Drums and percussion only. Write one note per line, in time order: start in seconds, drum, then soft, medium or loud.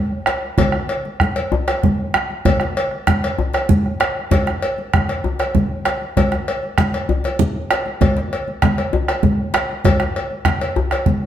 0.26 bombo rim medium
0.26 cowbell soft
0.26 djembe slap medium
0.26 high conga soft
0.57 bombo low medium
0.57 cowbell medium
0.57 high conga medium
0.57 djembe tone medium
0.57 low conga medium
0.57 djembe bass medium
0.72 bombo rim medium
0.89 cowbell soft
1.05 djembe slap soft
1.05 high conga soft
1.20 bombo rim medium
1.20 bombo low medium
1.20 high conga medium
1.36 cowbell soft
1.36 high conga soft
1.52 djembe tone medium
1.52 djembe bass medium
1.68 bombo rim medium
1.68 cowbell medium
1.68 djembe slap medium
1.83 bombo rim soft
1.83 bombo low medium
1.83 high conga medium
1.83 low conga medium
2.14 bombo rim loud
2.14 djembe slap medium
2.14 high conga soft
2.30 high conga soft
2.45 bombo rim soft
2.45 bombo low loud
2.45 cowbell medium
2.45 high conga medium
2.45 djembe tone medium
2.45 low conga medium
2.45 djembe bass medium
2.60 bombo rim medium
2.60 djembe slap medium
2.60 high conga soft
2.76 cowbell medium
2.76 high conga soft
2.91 bombo rim soft
2.91 djembe slap soft
3.07 bombo rim loud
3.07 bombo low loud
3.07 djembe slap medium
3.07 high conga medium
3.07 low conga medium
3.24 cowbell medium
3.38 high conga soft
3.38 djembe tone medium
3.38 djembe bass medium
3.54 bombo rim medium
3.54 cowbell medium
3.54 djembe slap medium
3.69 bombo low loud
3.69 high conga medium
3.69 low conga medium
3.85 bombo rim soft
3.85 djembe slap soft
4.00 bombo rim loud
4.00 cowbell medium
4.00 djembe slap medium
4.00 high conga soft
4.31 bombo low loud
4.31 cowbell medium
4.31 djembe tone medium
4.31 high conga medium
4.31 djembe bass medium
4.31 low conga medium
4.47 bombo rim medium
4.47 djembe slap medium
4.62 cowbell medium
4.78 djembe slap soft
4.78 high conga soft
4.93 bombo rim loud
4.93 bombo low loud
4.93 djembe slap medium
4.93 high conga medium
4.93 low conga medium
5.09 cowbell soft
5.09 high conga soft
5.24 djembe tone medium
5.24 djembe bass medium
5.39 bombo rim medium
5.39 cowbell soft
5.39 djembe slap medium
5.55 bombo rim soft
5.55 bombo low medium
5.55 high conga medium
5.55 low conga medium
5.85 bombo rim medium
5.85 cowbell soft
5.85 djembe slap medium
5.85 high conga soft
6.02 high conga soft
6.17 bombo low medium
6.17 cowbell medium
6.17 djembe tone medium
6.17 high conga medium
6.17 djembe bass medium
6.17 low conga medium
6.32 bombo rim medium
6.32 djembe slap medium
6.48 cowbell medium
6.63 djembe slap soft
6.63 high conga soft
6.78 bombo rim medium
6.78 bombo low medium
6.78 djembe slap medium
6.78 high conga medium
6.78 low conga medium
6.94 cowbell soft
6.94 high conga soft
7.09 djembe tone medium
7.09 djembe bass medium
7.24 cowbell soft
7.24 djembe slap medium
7.39 bombo rim soft
7.39 bombo low medium
7.39 high conga medium
7.39 low conga medium
7.70 bombo rim loud
7.70 cowbell soft
7.70 djembe slap medium
7.70 high conga soft
7.86 high conga soft
8.01 bombo low loud
8.01 cowbell medium
8.01 djembe tone medium
8.01 high conga medium
8.01 djembe bass medium
8.01 low conga medium
8.17 djembe slap medium
8.33 cowbell soft
8.48 djembe slap soft
8.48 high conga soft
8.62 bombo rim loud
8.62 bombo low loud
8.62 djembe slap medium
8.62 high conga medium
8.62 low conga medium
8.78 cowbell soft
8.78 high conga soft
8.93 djembe tone medium
8.93 djembe bass medium
9.08 bombo rim medium
9.08 cowbell soft
9.08 djembe slap medium
9.23 bombo rim soft
9.23 bombo low loud
9.23 high conga medium
9.23 low conga medium
9.54 bombo rim loud
9.54 cowbell soft
9.54 djembe slap medium
9.54 high conga soft
9.70 high conga soft
9.85 bombo low loud
9.85 cowbell medium
9.85 djembe slap soft
9.85 high conga medium
9.85 djembe tone medium
9.85 low conga medium
9.85 djembe bass medium
10.00 bombo rim medium
10.00 djembe slap medium
10.16 cowbell soft
10.16 djembe slap soft
10.31 high conga soft
10.45 bombo rim loud
10.45 bombo low loud
10.45 djembe slap medium
10.45 high conga medium
10.45 low conga medium
10.61 cowbell soft
10.76 bombo rim soft
10.76 djembe slap soft
10.76 djembe tone medium
10.76 djembe bass medium
10.91 bombo rim medium
10.91 cowbell soft
10.91 djembe slap medium
11.06 bombo rim soft
11.06 bombo low loud
11.06 high conga medium
11.06 low conga medium